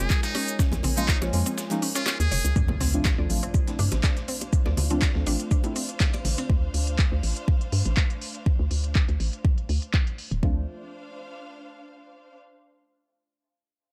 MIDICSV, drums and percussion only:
0, 0, Header, 1, 2, 480
1, 0, Start_track
1, 0, Tempo, 491803
1, 579, Time_signature, 4, 2, 24, 8
1, 13589, End_track
2, 0, Start_track
2, 0, Title_t, "Drums"
2, 98, Note_on_c, 9, 82, 64
2, 99, Note_on_c, 9, 36, 113
2, 100, Note_on_c, 9, 39, 118
2, 103, Note_off_c, 9, 82, 0
2, 103, Note_on_c, 9, 82, 60
2, 197, Note_off_c, 9, 36, 0
2, 198, Note_off_c, 9, 39, 0
2, 200, Note_off_c, 9, 82, 0
2, 227, Note_on_c, 9, 38, 109
2, 227, Note_on_c, 9, 82, 86
2, 228, Note_on_c, 9, 42, 54
2, 231, Note_off_c, 9, 82, 0
2, 231, Note_on_c, 9, 82, 36
2, 324, Note_off_c, 9, 38, 0
2, 325, Note_off_c, 9, 42, 0
2, 329, Note_off_c, 9, 82, 0
2, 339, Note_on_c, 9, 38, 51
2, 339, Note_on_c, 9, 46, 103
2, 340, Note_on_c, 9, 60, 83
2, 437, Note_off_c, 9, 38, 0
2, 437, Note_off_c, 9, 46, 0
2, 438, Note_off_c, 9, 60, 0
2, 467, Note_on_c, 9, 82, 63
2, 469, Note_on_c, 9, 42, 73
2, 472, Note_off_c, 9, 82, 0
2, 472, Note_on_c, 9, 82, 74
2, 566, Note_off_c, 9, 42, 0
2, 569, Note_off_c, 9, 82, 0
2, 578, Note_on_c, 9, 38, 106
2, 578, Note_on_c, 9, 82, 82
2, 579, Note_on_c, 9, 36, 119
2, 583, Note_off_c, 9, 82, 0
2, 583, Note_on_c, 9, 82, 59
2, 676, Note_off_c, 9, 36, 0
2, 676, Note_off_c, 9, 38, 0
2, 681, Note_off_c, 9, 82, 0
2, 699, Note_on_c, 9, 64, 80
2, 707, Note_on_c, 9, 38, 50
2, 708, Note_on_c, 9, 42, 40
2, 712, Note_on_c, 9, 82, 36
2, 797, Note_off_c, 9, 64, 0
2, 804, Note_off_c, 9, 38, 0
2, 806, Note_off_c, 9, 42, 0
2, 809, Note_off_c, 9, 82, 0
2, 811, Note_on_c, 9, 60, 56
2, 819, Note_on_c, 9, 82, 64
2, 820, Note_on_c, 9, 46, 110
2, 821, Note_on_c, 9, 63, 87
2, 908, Note_off_c, 9, 60, 0
2, 916, Note_off_c, 9, 82, 0
2, 917, Note_off_c, 9, 46, 0
2, 919, Note_off_c, 9, 63, 0
2, 947, Note_on_c, 9, 42, 72
2, 951, Note_on_c, 9, 82, 73
2, 1045, Note_off_c, 9, 42, 0
2, 1048, Note_off_c, 9, 82, 0
2, 1059, Note_on_c, 9, 36, 115
2, 1059, Note_on_c, 9, 38, 119
2, 1059, Note_on_c, 9, 39, 125
2, 1059, Note_on_c, 9, 82, 92
2, 1062, Note_off_c, 9, 82, 0
2, 1062, Note_on_c, 9, 82, 60
2, 1156, Note_off_c, 9, 36, 0
2, 1156, Note_off_c, 9, 38, 0
2, 1157, Note_off_c, 9, 39, 0
2, 1159, Note_off_c, 9, 82, 0
2, 1187, Note_on_c, 9, 38, 56
2, 1189, Note_on_c, 9, 60, 89
2, 1190, Note_on_c, 9, 82, 34
2, 1285, Note_off_c, 9, 38, 0
2, 1286, Note_off_c, 9, 60, 0
2, 1288, Note_off_c, 9, 82, 0
2, 1299, Note_on_c, 9, 46, 104
2, 1299, Note_on_c, 9, 82, 71
2, 1397, Note_off_c, 9, 46, 0
2, 1397, Note_off_c, 9, 82, 0
2, 1427, Note_on_c, 9, 42, 71
2, 1430, Note_on_c, 9, 82, 70
2, 1525, Note_off_c, 9, 42, 0
2, 1528, Note_off_c, 9, 82, 0
2, 1539, Note_on_c, 9, 38, 106
2, 1539, Note_on_c, 9, 82, 79
2, 1542, Note_off_c, 9, 82, 0
2, 1542, Note_on_c, 9, 82, 60
2, 1636, Note_off_c, 9, 38, 0
2, 1640, Note_off_c, 9, 82, 0
2, 1659, Note_on_c, 9, 60, 52
2, 1667, Note_on_c, 9, 38, 51
2, 1667, Note_on_c, 9, 42, 56
2, 1670, Note_on_c, 9, 82, 35
2, 1757, Note_off_c, 9, 60, 0
2, 1764, Note_off_c, 9, 42, 0
2, 1765, Note_off_c, 9, 38, 0
2, 1768, Note_off_c, 9, 82, 0
2, 1779, Note_on_c, 9, 46, 107
2, 1779, Note_on_c, 9, 82, 68
2, 1876, Note_off_c, 9, 46, 0
2, 1877, Note_off_c, 9, 82, 0
2, 1907, Note_on_c, 9, 38, 109
2, 1907, Note_on_c, 9, 42, 72
2, 1907, Note_on_c, 9, 82, 83
2, 1911, Note_off_c, 9, 82, 0
2, 1911, Note_on_c, 9, 82, 73
2, 2005, Note_off_c, 9, 38, 0
2, 2005, Note_off_c, 9, 42, 0
2, 2008, Note_off_c, 9, 82, 0
2, 2011, Note_on_c, 9, 60, 79
2, 2019, Note_on_c, 9, 38, 50
2, 2020, Note_on_c, 9, 39, 126
2, 2022, Note_on_c, 9, 82, 62
2, 2108, Note_off_c, 9, 60, 0
2, 2117, Note_off_c, 9, 38, 0
2, 2117, Note_off_c, 9, 39, 0
2, 2120, Note_off_c, 9, 82, 0
2, 2147, Note_on_c, 9, 42, 56
2, 2147, Note_on_c, 9, 82, 65
2, 2150, Note_off_c, 9, 82, 0
2, 2150, Note_on_c, 9, 82, 34
2, 2245, Note_off_c, 9, 42, 0
2, 2248, Note_off_c, 9, 82, 0
2, 2259, Note_on_c, 9, 82, 65
2, 2260, Note_on_c, 9, 46, 105
2, 2262, Note_on_c, 9, 63, 64
2, 2356, Note_off_c, 9, 82, 0
2, 2357, Note_off_c, 9, 46, 0
2, 2359, Note_off_c, 9, 63, 0
2, 2388, Note_on_c, 9, 42, 74
2, 2391, Note_on_c, 9, 82, 75
2, 2485, Note_off_c, 9, 42, 0
2, 2488, Note_off_c, 9, 82, 0
2, 2498, Note_on_c, 9, 82, 90
2, 2499, Note_on_c, 9, 36, 118
2, 2596, Note_off_c, 9, 82, 0
2, 2597, Note_off_c, 9, 36, 0
2, 2619, Note_on_c, 9, 64, 90
2, 2625, Note_on_c, 9, 60, 54
2, 2716, Note_off_c, 9, 64, 0
2, 2723, Note_off_c, 9, 60, 0
2, 2737, Note_on_c, 9, 63, 87
2, 2739, Note_on_c, 9, 38, 58
2, 2739, Note_on_c, 9, 46, 107
2, 2739, Note_on_c, 9, 82, 72
2, 2834, Note_off_c, 9, 63, 0
2, 2837, Note_off_c, 9, 38, 0
2, 2837, Note_off_c, 9, 46, 0
2, 2837, Note_off_c, 9, 82, 0
2, 2867, Note_on_c, 9, 42, 67
2, 2964, Note_off_c, 9, 42, 0
2, 2979, Note_on_c, 9, 36, 115
2, 2979, Note_on_c, 9, 38, 116
2, 2979, Note_on_c, 9, 39, 126
2, 2979, Note_on_c, 9, 82, 91
2, 2984, Note_on_c, 9, 60, 83
2, 3076, Note_off_c, 9, 36, 0
2, 3076, Note_off_c, 9, 38, 0
2, 3076, Note_off_c, 9, 82, 0
2, 3077, Note_off_c, 9, 39, 0
2, 3082, Note_off_c, 9, 60, 0
2, 3219, Note_on_c, 9, 46, 104
2, 3219, Note_on_c, 9, 82, 69
2, 3317, Note_off_c, 9, 46, 0
2, 3317, Note_off_c, 9, 82, 0
2, 3347, Note_on_c, 9, 42, 69
2, 3445, Note_off_c, 9, 42, 0
2, 3456, Note_on_c, 9, 60, 53
2, 3459, Note_on_c, 9, 36, 119
2, 3459, Note_on_c, 9, 82, 87
2, 3553, Note_off_c, 9, 60, 0
2, 3556, Note_off_c, 9, 36, 0
2, 3556, Note_off_c, 9, 82, 0
2, 3587, Note_on_c, 9, 38, 48
2, 3587, Note_on_c, 9, 42, 56
2, 3684, Note_off_c, 9, 38, 0
2, 3684, Note_off_c, 9, 42, 0
2, 3697, Note_on_c, 9, 63, 64
2, 3698, Note_on_c, 9, 46, 111
2, 3699, Note_on_c, 9, 82, 72
2, 3795, Note_off_c, 9, 63, 0
2, 3796, Note_off_c, 9, 46, 0
2, 3796, Note_off_c, 9, 82, 0
2, 3823, Note_on_c, 9, 60, 78
2, 3826, Note_on_c, 9, 42, 70
2, 3827, Note_on_c, 9, 38, 56
2, 3921, Note_off_c, 9, 60, 0
2, 3924, Note_off_c, 9, 38, 0
2, 3924, Note_off_c, 9, 42, 0
2, 3939, Note_on_c, 9, 36, 118
2, 3939, Note_on_c, 9, 38, 117
2, 3939, Note_on_c, 9, 39, 125
2, 3939, Note_on_c, 9, 82, 91
2, 4036, Note_off_c, 9, 36, 0
2, 4036, Note_off_c, 9, 38, 0
2, 4036, Note_off_c, 9, 39, 0
2, 4036, Note_off_c, 9, 82, 0
2, 4066, Note_on_c, 9, 42, 52
2, 4067, Note_on_c, 9, 38, 51
2, 4164, Note_off_c, 9, 42, 0
2, 4165, Note_off_c, 9, 38, 0
2, 4178, Note_on_c, 9, 46, 105
2, 4179, Note_on_c, 9, 82, 69
2, 4276, Note_off_c, 9, 46, 0
2, 4277, Note_off_c, 9, 82, 0
2, 4307, Note_on_c, 9, 42, 71
2, 4309, Note_on_c, 9, 60, 58
2, 4404, Note_off_c, 9, 42, 0
2, 4407, Note_off_c, 9, 60, 0
2, 4419, Note_on_c, 9, 36, 121
2, 4419, Note_on_c, 9, 82, 88
2, 4516, Note_off_c, 9, 82, 0
2, 4517, Note_off_c, 9, 36, 0
2, 4544, Note_on_c, 9, 64, 86
2, 4546, Note_on_c, 9, 38, 44
2, 4642, Note_off_c, 9, 64, 0
2, 4644, Note_off_c, 9, 38, 0
2, 4658, Note_on_c, 9, 46, 111
2, 4658, Note_on_c, 9, 63, 102
2, 4659, Note_on_c, 9, 82, 68
2, 4660, Note_on_c, 9, 60, 82
2, 4756, Note_off_c, 9, 46, 0
2, 4756, Note_off_c, 9, 63, 0
2, 4756, Note_off_c, 9, 82, 0
2, 4758, Note_off_c, 9, 60, 0
2, 4787, Note_on_c, 9, 42, 67
2, 4884, Note_off_c, 9, 42, 0
2, 4898, Note_on_c, 9, 38, 117
2, 4898, Note_on_c, 9, 82, 88
2, 4899, Note_on_c, 9, 36, 124
2, 4899, Note_on_c, 9, 39, 127
2, 4996, Note_off_c, 9, 38, 0
2, 4996, Note_off_c, 9, 39, 0
2, 4996, Note_off_c, 9, 82, 0
2, 4997, Note_off_c, 9, 36, 0
2, 5027, Note_on_c, 9, 38, 52
2, 5124, Note_off_c, 9, 38, 0
2, 5139, Note_on_c, 9, 46, 107
2, 5139, Note_on_c, 9, 82, 67
2, 5149, Note_on_c, 9, 60, 51
2, 5236, Note_off_c, 9, 46, 0
2, 5236, Note_off_c, 9, 82, 0
2, 5246, Note_off_c, 9, 60, 0
2, 5267, Note_on_c, 9, 42, 65
2, 5365, Note_off_c, 9, 42, 0
2, 5379, Note_on_c, 9, 36, 126
2, 5379, Note_on_c, 9, 82, 86
2, 5476, Note_off_c, 9, 82, 0
2, 5477, Note_off_c, 9, 36, 0
2, 5501, Note_on_c, 9, 60, 85
2, 5507, Note_on_c, 9, 42, 52
2, 5599, Note_off_c, 9, 60, 0
2, 5604, Note_off_c, 9, 42, 0
2, 5619, Note_on_c, 9, 46, 115
2, 5619, Note_on_c, 9, 82, 70
2, 5717, Note_off_c, 9, 46, 0
2, 5717, Note_off_c, 9, 82, 0
2, 5747, Note_on_c, 9, 42, 65
2, 5844, Note_off_c, 9, 42, 0
2, 5859, Note_on_c, 9, 38, 117
2, 5859, Note_on_c, 9, 39, 126
2, 5859, Note_on_c, 9, 82, 91
2, 5860, Note_on_c, 9, 36, 125
2, 5956, Note_off_c, 9, 38, 0
2, 5956, Note_off_c, 9, 82, 0
2, 5957, Note_off_c, 9, 36, 0
2, 5957, Note_off_c, 9, 39, 0
2, 5987, Note_on_c, 9, 42, 53
2, 5988, Note_off_c, 9, 42, 0
2, 5988, Note_on_c, 9, 42, 46
2, 5994, Note_on_c, 9, 60, 57
2, 6085, Note_off_c, 9, 42, 0
2, 6092, Note_off_c, 9, 60, 0
2, 6098, Note_on_c, 9, 63, 66
2, 6099, Note_on_c, 9, 46, 108
2, 6100, Note_on_c, 9, 38, 57
2, 6100, Note_on_c, 9, 82, 69
2, 6196, Note_off_c, 9, 46, 0
2, 6196, Note_off_c, 9, 63, 0
2, 6197, Note_off_c, 9, 38, 0
2, 6197, Note_off_c, 9, 82, 0
2, 6227, Note_on_c, 9, 42, 69
2, 6228, Note_off_c, 9, 42, 0
2, 6228, Note_on_c, 9, 42, 45
2, 6325, Note_off_c, 9, 42, 0
2, 6340, Note_on_c, 9, 36, 123
2, 6437, Note_off_c, 9, 36, 0
2, 6579, Note_on_c, 9, 46, 115
2, 6676, Note_off_c, 9, 46, 0
2, 6707, Note_on_c, 9, 42, 64
2, 6805, Note_off_c, 9, 42, 0
2, 6820, Note_on_c, 9, 36, 121
2, 6820, Note_on_c, 9, 39, 121
2, 6917, Note_off_c, 9, 36, 0
2, 6917, Note_off_c, 9, 39, 0
2, 7059, Note_on_c, 9, 46, 108
2, 7157, Note_off_c, 9, 46, 0
2, 7187, Note_on_c, 9, 42, 65
2, 7285, Note_off_c, 9, 42, 0
2, 7300, Note_on_c, 9, 36, 126
2, 7397, Note_off_c, 9, 36, 0
2, 7427, Note_on_c, 9, 42, 51
2, 7525, Note_off_c, 9, 42, 0
2, 7538, Note_on_c, 9, 46, 117
2, 7636, Note_off_c, 9, 46, 0
2, 7666, Note_on_c, 9, 42, 64
2, 7764, Note_off_c, 9, 42, 0
2, 7779, Note_on_c, 9, 39, 122
2, 7780, Note_on_c, 9, 36, 124
2, 7876, Note_off_c, 9, 39, 0
2, 7877, Note_off_c, 9, 36, 0
2, 7907, Note_on_c, 9, 42, 51
2, 8004, Note_off_c, 9, 42, 0
2, 8018, Note_on_c, 9, 46, 115
2, 8116, Note_off_c, 9, 46, 0
2, 8147, Note_on_c, 9, 42, 67
2, 8245, Note_off_c, 9, 42, 0
2, 8260, Note_on_c, 9, 36, 121
2, 8357, Note_off_c, 9, 36, 0
2, 8499, Note_on_c, 9, 46, 113
2, 8596, Note_off_c, 9, 46, 0
2, 8627, Note_on_c, 9, 42, 61
2, 8724, Note_off_c, 9, 42, 0
2, 8739, Note_on_c, 9, 36, 122
2, 8739, Note_on_c, 9, 39, 120
2, 8837, Note_off_c, 9, 36, 0
2, 8837, Note_off_c, 9, 39, 0
2, 8867, Note_on_c, 9, 42, 34
2, 8964, Note_off_c, 9, 42, 0
2, 8979, Note_on_c, 9, 46, 106
2, 9077, Note_off_c, 9, 46, 0
2, 9108, Note_on_c, 9, 42, 62
2, 9205, Note_off_c, 9, 42, 0
2, 9219, Note_on_c, 9, 36, 126
2, 9317, Note_off_c, 9, 36, 0
2, 9347, Note_on_c, 9, 42, 49
2, 9445, Note_off_c, 9, 42, 0
2, 9459, Note_on_c, 9, 46, 110
2, 9556, Note_off_c, 9, 46, 0
2, 9587, Note_on_c, 9, 42, 63
2, 9685, Note_off_c, 9, 42, 0
2, 9699, Note_on_c, 9, 36, 125
2, 9699, Note_on_c, 9, 39, 119
2, 9797, Note_off_c, 9, 36, 0
2, 9797, Note_off_c, 9, 39, 0
2, 9828, Note_on_c, 9, 42, 50
2, 9925, Note_off_c, 9, 42, 0
2, 9939, Note_on_c, 9, 46, 109
2, 10036, Note_off_c, 9, 46, 0
2, 10067, Note_on_c, 9, 42, 67
2, 10165, Note_off_c, 9, 42, 0
2, 10179, Note_on_c, 9, 36, 104
2, 10277, Note_off_c, 9, 36, 0
2, 13589, End_track
0, 0, End_of_file